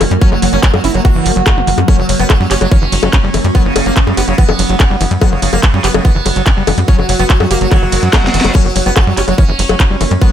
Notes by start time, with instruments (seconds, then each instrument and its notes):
Already playing: ambient pad F#3 A#3, sitar C#4
0.01 analog synth bass F#1, acid bass E3, open hi-hat, high bongo
0.11 analog synth bass F#2, acid bass G3, closed hi-hat
0.21 acid bass F#3, sitar C#4, kick, closed hi-hat
0.32 analog synth bass F#1, acid bass E3, sitar F#3, high bongo
0.42 analog synth bass F#1, sitar F#3, acid bass F#3, open hi-hat
0.53 analog synth bass F#1, acid bass F#3, sitar C#4, closed hi-hat
0.63 wobble bass F#3, sitar F#3, acid bass C#4, kick, clap, closed hi-hat
0.74 analog synth bass F#2, sitar F#3, acid bass G3, high bongo
0.84 analog synth bass F#1, acid bass C#4, sitar E4, open hi-hat
0.94 analog synth bass F#1, acid bass F#3, sitar F#3, wobble bass A#3, closed hi-hat
1.05 acid bass E3, sitar F#4, kick, closed hi-hat, high bongo
1.15 analog synth bass F#1, acid bass E3
1.26 analog synth bass F#1, acid bass F#3, open hi-hat
1.36 analog synth bass F#1, acid bass F#3, closed hi-hat
1.46 acid bass F#4, kick, clap, closed hi-hat, high bongo
1.57 analog synth bass F#1, acid bass G3
1.67 analog synth bass F#1, acid bass E3, open hi-hat
1.78 analog synth bass F#2, acid bass F#4, closed hi-hat, high bongo
1.88 acid bass F#3, wobble bass A#3, ambient pad C#4, sitar C#4, kick, closed hi-hat, high bongo
1.99 analog synth bass F#1, acid bass E3, sitar F#3
2.09 analog synth bass F#1, acid bass F#3, sitar F#3, open hi-hat, ride
2.19 analog synth bass F#1, acid bass F#3, sitar B3, closed hi-hat
2.30 sitar F#3, acid bass C#4, kick, clap, closed hi-hat, high bongo
2.40 analog synth bass F#2, sitar F#3, acid bass G3
2.51 analog synth bass F#1, sitar C#4, acid bass G4, clap, open hi-hat, ride
2.61 analog synth bass F#1, acid bass F#3, sitar F#3, closed hi-hat, high bongo
2.71 acid bass E3, sitar C#4, kick, closed hi-hat
2.82 analog synth bass F#1, acid bass E3
2.92 analog synth bass F#1, acid bass F#3, open hi-hat, ride
3.03 analog synth bass F#1, acid bass F#3, closed hi-hat, high bongo
3.13 acid bass C#4, kick, clap, closed hi-hat
3.24 analog synth bass F#1, acid bass G3
3.34 analog synth bass F#1, acid bass E3, wobble bass A#3, open hi-hat, ride, high bongo
3.44 analog synth bass F#2, acid bass G3, closed hi-hat
3.55 acid bass F#3, wobble bass A#3, sitar B3, kick, closed hi-hat
3.65 analog synth bass F#1, sitar C#3, acid bass E3
3.76 analog synth bass F#1, sitar C#3, acid bass F#3, open hi-hat, ride, high bongo
3.86 analog synth bass F#1, acid bass F#3, sitar A#3, closed hi-hat
3.96 sitar C#3, acid bass C#4, kick, clap, closed hi-hat
4.07 analog synth bass F#2, sitar C#3, acid bass G3, high bongo
4.17 analog synth bass F#1, sitar B3, acid bass G4, open hi-hat, ride
4.28 analog synth bass F#1, sitar C#3, acid bass F#3, closed hi-hat
4.38 acid bass E3, sitar B3, kick, closed hi-hat
4.49 analog synth bass F#1, acid bass E3, high bongo
4.59 analog synth bass F#1, acid bass F#3, open hi-hat, ride
4.69 analog synth bass F#1, acid bass F#3, closed hi-hat
4.80 acid bass C#4, kick, clap, closed hi-hat, high bongo
4.90 analog synth bass F#1, acid bass G3
5.01 analog synth bass F#1, acid bass E3, open hi-hat, ride
5.11 analog synth bass F#2, acid bass G3, closed hi-hat
5.21 acid bass F#3, wobble bass A#3, sitar B3, ambient pad F#4, kick, closed hi-hat, high bongo
5.32 analog synth bass F#1, sitar C#3, acid bass E3
5.42 analog synth bass F#1, sitar C#3, acid bass F#3, open hi-hat, ride
5.53 analog synth bass F#1, acid bass F#3, sitar A#3, closed hi-hat, high bongo
5.63 sitar C#3, acid bass C#4, kick, clap, closed hi-hat
5.74 analog synth bass F#2, sitar C#3, acid bass G3
5.84 analog synth bass F#1, sitar B3, acid bass G4, clap, open hi-hat, ride
5.94 analog synth bass F#1, sitar C#3, acid bass F#3, wobble bass A#3, closed hi-hat, high bongo
6.05 acid bass E3, sitar B3, kick, closed hi-hat
6.15 analog synth bass F#1, acid bass E3
6.26 analog synth bass F#1, acid bass F#3, open hi-hat, ride, high bongo
6.36 analog synth bass F#1, acid bass F#3, closed hi-hat
6.46 acid bass C#4, kick, clap, closed hi-hat
6.57 analog synth bass F#1, acid bass G3
6.67 analog synth bass F#1, acid bass E3, open hi-hat, ride, high bongo
6.78 analog synth bass F#2, acid bass G3, closed hi-hat
6.88 acid bass F#3, sitar C#4, kick, closed hi-hat
6.99 analog synth bass F#1, acid bass E3, sitar F#3, high bongo
7.09 analog synth bass F#1, acid bass F#3, sitar F#3, open hi-hat, ride
7.19 analog synth bass F#1, acid bass F#3, sitar B3, closed hi-hat
7.30 sitar F#3, wobble bass F#3, acid bass C#4, kick, clap, closed hi-hat
7.40 analog synth bass F#2, sitar F#3, acid bass G3, high bongo
7.51 analog synth bass F#1, sitar A#3, acid bass G4, open hi-hat, ride
7.61 analog synth bass F#1, acid bass F#3, sitar F#3, wobble bass A#3, closed hi-hat
7.71 acid bass E3, sitar F#3, kick, clap, closed hi-hat, high bongo, reverse cymbal
7.82 analog synth bass F#1, acid bass E3
7.92 analog synth bass F#1, acid bass F#3, open hi-hat, ride
8.03 analog synth bass F#2, acid bass F#3, closed hi-hat
8.13 acid bass C#4, kick, snare, clap, closed hi-hat, high bongo
8.24 analog synth bass F#1, acid bass G3, snare
8.34 analog synth bass F#1, acid bass E3, open hi-hat, ride
8.41 analog synth bass F#1, acid bass G3, snare, closed hi-hat, high bongo
8.55 acid bass F#3, ambient pad F#3 C#4, wobble bass A#3, sitar C#4, kick, closed hi-hat, crash, high bongo
8.65 analog synth bass F#1, acid bass E3, sitar F#3
8.76 analog synth bass F#1, acid bass F#3, sitar F#3, open hi-hat, ride
8.86 analog synth bass F#1, acid bass F#3, sitar B3, closed hi-hat
8.96 sitar F#3, acid bass C#4, kick, clap, closed hi-hat, high bongo
9.07 analog synth bass F#2, sitar F#3, acid bass G3
9.17 analog synth bass F#1, sitar C#4, acid bass G4, clap, open hi-hat, ride
9.28 analog synth bass F#1, sitar F#3, acid bass F#3, closed hi-hat, high bongo
9.38 acid bass E3, sitar C#4, kick, closed hi-hat
9.49 analog synth bass F#1, acid bass E3
9.59 analog synth bass F#1, acid bass F#3, open hi-hat, ride
9.69 analog synth bass F#1, acid bass F#3, closed hi-hat, high bongo
9.80 acid bass C#4, kick, clap, closed hi-hat
9.90 analog synth bass F#1, acid bass G3
10.01 analog synth bass F#1, acid bass E3, wobble bass A#3, open hi-hat, ride, high bongo
10.11 analog synth bass F#2, acid bass G3, closed hi-hat
10.21 acid bass F#3, wobble bass A#3, sitar B3, kick, closed hi-hat